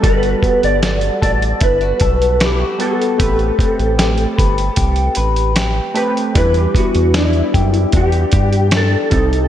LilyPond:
<<
  \new Staff \with { instrumentName = "Electric slide guitar" } { \time 4/4 \key e \minor \tempo 4 = 76 b'8. d''8. d''8 b'4 g'8 a'8~ | a'2~ a'8 r4. | b'16 g'16 fis'8 e'4 g'4 a'4 | }
  \new Staff \with { instrumentName = "Clean electric guitar" } { \time 4/4 \key e \minor g8 b8 fis'8 a'8 e'16 fis'16 a'8 e'16 fis'16 b8 | a8 c'8 g'8 b'8 g'8 b'8 g'8 c'8 | e8 b8 d'8 g'8 d'8 g'8 d'8 c8 | }
  \new Staff \with { instrumentName = "Synth keys" } { \time 4/4 \key e \minor <g b fis' a'>4 r2 r8 <g b fis' a'>8 | <a c' g' b'>4 r2 r8 <a c' g' b'>8 | <g d' e' b'>4 r2 r8 <g c' ees' a'>8 | }
  \new Staff \with { instrumentName = "Analog synth bass" } { \clef bass \time 4/4 \key e \minor g,,8 r16 g,,8. a,,8 g,,8 b,,4 r8 | a,,8 r16 a,,8. g,,8 c,8 a,,4 r8 | e,8 r16 e,8. fis,8 e,8 g,4 c,8 | }
  \new DrumStaff \with { instrumentName = "Drums" } \drummode { \time 4/4 <hh bd>16 hh16 <hh bd>16 hh16 <hh sn>16 hh16 <hh bd>16 hh16 <hh bd>16 hh16 <hh bd>16 hh16 <hh sn>8 hh16 hh16 | <hh bd>16 hh16 <hh bd>16 hh16 <hh sn>16 hh16 <hh bd>16 hh16 <hh bd>16 hh16 hh16 hh16 <hh sn>8 hh16 hh16 | <hh bd>16 hh16 <hh bd>16 hh16 <hh sn>16 hh16 <hh bd>16 hh16 <hh bd>16 hh16 <hh bd>16 hh16 <hh sn>8 <hh bd>16 hh16 | }
>>